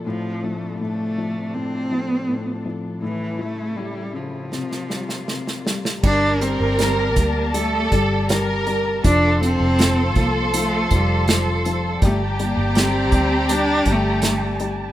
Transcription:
Already playing: F3 A4
0.06 A2 C3 F3 D4
0.44 F3 A3
0.81 A2 A3
1.18 F3
1.54 A2 C4
1.91 F3
2.28 A2
2.65 F3
3.02 A2 C#3 E3 G3 E4
3.39 A3 E4
3.76 G3
4.13 C#3 F3
4.51 C3 A#3 F4, snare
4.71 snare
4.90 G3, snare
5.09 snare
5.28 C3, snare
5.47 snare
5.66 G3, snare
5.85 snare
6.03 G1 G3 D4 G4 A#4 D5 A5, kick, crash
6.41 G3 C4, closed hi-hat
6.60 G1
6.79 G3, snare, closed hi-hat
7.15 D2 G3 A#3, kick, closed hi-hat
7.54 G3 A3 A4, closed hi-hat
7.92 G1 G3, kick, closed hi-hat
8.29 G3 A#4, snare, closed hi-hat
8.67 G3, closed hi-hat
9.04 F1 F3 D4 A4 C5 F5 C6, kick, closed hi-hat
9.41 F3 C4, closed hi-hat
9.60 F1
9.79 F3, snare, closed hi-hat
10.15 C2 F3 A#3, kick, closed hi-hat
10.54 F3 A3, closed hi-hat
10.91 F1 F3, kick, closed hi-hat
10.95 G3
11.28 F3, snare, closed hi-hat
11.65 F3, closed hi-hat
12.02 G1 G3 A3 G4 D5 G5 A5 A#5, kick, closed hi-hat
12.39 G3 A#3, closed hi-hat
12.57 G1
12.75 G3, snare, closed hi-hat
12.80 C4
13.12 D2 G3, kick, closed hi-hat
13.49 G3 D4, closed hi-hat
13.85 G1 G3, kick, closed hi-hat
13.92 A3
14.22 G3, snare, closed hi-hat
14.60 G3, closed hi-hat

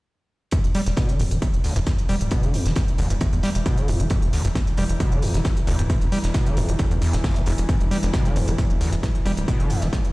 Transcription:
0.51 E2 E3, kick, closed hi-hat
0.64 E1, closed hi-hat
0.75 G3, snare, closed hi-hat, open hi-hat
0.86 E1, snare, closed hi-hat
0.97 B2, kick, snare, closed hi-hat
1.09 D3, closed hi-hat
1.20 E1 E2, closed hi-hat, open hi-hat
1.31 E1 G3, closed hi-hat
1.42 E2, kick, closed hi-hat
1.54 E1, closed hi-hat
1.64 D2, closed hi-hat, open hi-hat
1.76 E1 E2, snare, closed hi-hat
1.86 E2, kick, snare, closed hi-hat
1.98 closed hi-hat
2.09 E1 G3, closed hi-hat, open hi-hat
2.21 D1, closed hi-hat
2.31 B2, kick, closed hi-hat
2.43 E1 D3, closed hi-hat
2.54 E2, closed hi-hat, open hi-hat
2.66 E1 G3, snare, closed hi-hat
2.76 E2, kick, snare, closed hi-hat
2.88 closed hi-hat
2.98 E1 D2, closed hi-hat, open hi-hat
3.10 E1 E2, closed hi-hat
3.21 E2, kick, closed hi-hat
3.33 E2, closed hi-hat
3.43 G3, snare, closed hi-hat, open hi-hat
3.55 E1, closed hi-hat
3.66 B2, kick, closed hi-hat
3.77 D3, closed hi-hat
3.88 E1 E2, closed hi-hat, open hi-hat
4.00 E1 G3, closed hi-hat
4.10 E2, kick, closed hi-hat
4.22 E1, closed hi-hat
4.33 D2, snare, closed hi-hat, open hi-hat
4.45 E1 E2, snare, closed hi-hat
4.55 E2, kick, snare, closed hi-hat
4.67 closed hi-hat
4.77 E1 G3, closed hi-hat, open hi-hat
4.89 E1, closed hi-hat
5.00 B2, kick, closed hi-hat
5.12 E1 D3, closed hi-hat
5.22 E2, closed hi-hat, open hi-hat
5.34 E1 G3, snare, closed hi-hat
5.45 E2, kick, snare, closed hi-hat
5.57 closed hi-hat
5.67 E1 D2, closed hi-hat, open hi-hat
5.79 D1 E2, closed hi-hat
5.90 E2, kick, closed hi-hat
6.01 E1, closed hi-hat
6.12 G3, closed hi-hat, open hi-hat
6.24 E1, snare, closed hi-hat
6.34 B2, kick, snare, closed hi-hat
6.46 D3, closed hi-hat
6.57 E1 E2, closed hi-hat, open hi-hat
6.69 E1 G3, closed hi-hat
6.79 E2, kick, closed hi-hat
6.91 E2, closed hi-hat
7.02 E2, snare, closed hi-hat, open hi-hat
7.13 E1 B2, snare, closed hi-hat
7.24 F2, kick, snare, closed hi-hat, open hi-hat
7.36 E2, closed hi-hat
7.46 E1 E2, closed hi-hat, open hi-hat
7.58 E1, closed hi-hat
7.69 E2, kick, closed hi-hat
7.81 E1, closed hi-hat
7.91 G3, snare, closed hi-hat, open hi-hat
8.03 E1, snare, closed hi-hat
8.14 B2, kick, snare, closed hi-hat
8.25 D3, closed hi-hat
8.36 E1 E2, closed hi-hat, open hi-hat
8.48 E1 G3, closed hi-hat
8.58 E2, kick, closed hi-hat
8.70 E1, closed hi-hat
8.81 D2, closed hi-hat, open hi-hat
8.92 E1 E2, snare, closed hi-hat
9.03 E2, kick, snare, closed hi-hat
9.15 closed hi-hat
9.26 E1 G3, closed hi-hat, open hi-hat
9.37 D1, closed hi-hat
9.48 B2, kick, closed hi-hat
9.60 E1 D3, closed hi-hat
9.70 E2, closed hi-hat, open hi-hat
9.82 E1 G3, snare, closed hi-hat
9.93 E2, kick, snare, closed hi-hat
10.05 closed hi-hat

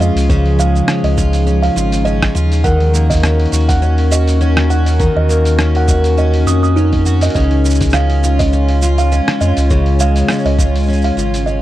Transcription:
Already playing: C#3 F3 G#3 C#4 G#4
0.00 F2 F4 D#5, cabasa
0.15 C#2, open hi-hat, cabasa
0.29 C#3 D#4, kick, cabasa
0.46 open hi-hat
0.59 G#3 F5, cabasa
0.76 cabasa
0.88 C#4, cross-stick, cabasa
1.03 C#2 D#5, open hi-hat
1.17 F4, kick, cabasa
1.33 open hi-hat, cabasa
1.47 C#4, cabasa
1.63 F5, open hi-hat
1.76 G#1 F4, cabasa
1.92 open hi-hat, cabasa
2.05 C#4 D#5, cabasa
2.22 kick, cross-stick, open hi-hat
2.35 D#2 F4, cabasa
2.52 open hi-hat, cabasa
2.64 D#3 C#4 F#4 A#4 F#5, kick, cabasa
2.80 open hi-hat
2.93 A#3, cabasa
3.10 D#5, kick, open hi-hat, cabasa
3.14 open hi-hat
3.17 open hi-hat
3.20 C#4, cross-stick, open hi-hat, cabasa
3.40 open hi-hat
3.46 open hi-hat
3.52 D#2 F#4, open hi-hat, cabasa
3.61 open hi-hat
3.69 F#5, kick, open hi-hat, cabasa
3.82 C#4, cabasa
3.98 open hi-hat
4.11 F#4 D#5, cabasa
4.28 open hi-hat, cabasa
4.41 C#4, cabasa
4.57 cross-stick
4.70 F#4 F#5, cabasa
4.86 open hi-hat, cabasa
4.99 D#3, kick, cabasa
5.16 D#2 D#5
5.29 A#3, cabasa
5.45 open hi-hat, cabasa
5.59 C#4, cross-stick, cabasa
5.75 F#5, open hi-hat
5.88 F#4, kick, cabasa
6.04 open hi-hat, cabasa
6.18 C#4 D#5, cabasa
6.34 open hi-hat
6.47 F2 F#4 D#6, cabasa
6.63 D#6, cabasa
6.76 C#4 D#4, cabasa
6.93 kick, open hi-hat
7.06 F#4, cabasa
7.21 D#5, open hi-hat, cabasa
7.24 open hi-hat
7.30 C#5, open hi-hat
7.34 C#2 C#3 G#3 F4 D#5, kick, open hi-hat, cabasa
7.40 open hi-hat
7.44 open hi-hat
7.51 open hi-hat
7.65 G#3, cabasa
7.70 cabasa
7.75 cabasa
7.81 kick, open hi-hat, cabasa
7.84 cabasa
7.90 cross-stick, cabasa
7.94 C#4 F5, cabasa
8.10 open hi-hat
8.23 F4, cabasa
8.39 D#5, kick, open hi-hat, cabasa
8.53 C#4, cabasa
8.69 open hi-hat
8.82 F4, cabasa
8.98 F5, open hi-hat, cabasa
9.12 C#4, cabasa
9.28 cross-stick, open hi-hat
9.41 F2 F4 D#5, cabasa
9.57 C#2, open hi-hat, cabasa
9.70 C#3, kick, cabasa
9.86 open hi-hat
9.99 G#3 F5, cabasa
10.16 open hi-hat, cabasa
10.28 C#4, cross-stick, cabasa
10.32 cabasa
10.35 cabasa
10.38 cabasa
10.44 C#2 D#5, open hi-hat, cabasa
10.59 F4, kick, cabasa
10.76 open hi-hat, cabasa
10.79 cabasa
10.82 cabasa
10.86 C#4, cabasa
10.89 cabasa
10.93 cabasa
10.97 cabasa
11.01 F5, open hi-hat, cabasa
11.17 G#1 F4, cabasa
11.34 open hi-hat, cabasa
11.46 C#4 D#5, cabasa

